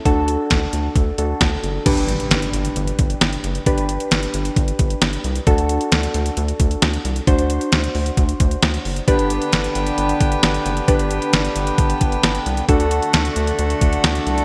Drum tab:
CC |----------------|x---------------|----------------|----------------|
HH |x-x-x-x-x-x-x-x-|xxxxxxxxxxxxxxxx|xxxxxxxxxxxxxxxx|xxxxxxxxxxxxxxxx|
SD |----o-------o---|----o-------o---|----o-------o---|----o-------o---|
BD |o---o---o---o---|o---------o-----|o-------o-o-----|o---------o-----|

CC |----------------|----------------|----------------|----------------|
HH |xxxxxxoxxxxxxxox|xxxxxxxxxxxxxxxx|xxxxxxxxxxxxxxxx|xxxxxxxxxxxxxxxx|
SD |----o-------o---|----o-------o---|----o-------o---|----o-------o---|
BD |o-------o-o-----|o---------o-----|o-------o-o-----|o---------o-----|